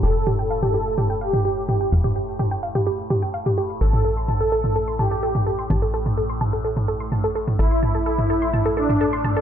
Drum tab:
T2 |--o--o--o--o--o-|-o--o--o--o--o--|-o--o--o--o--o--|o--o--o--o--o--o|

T2 |--o--o--o--o--o-|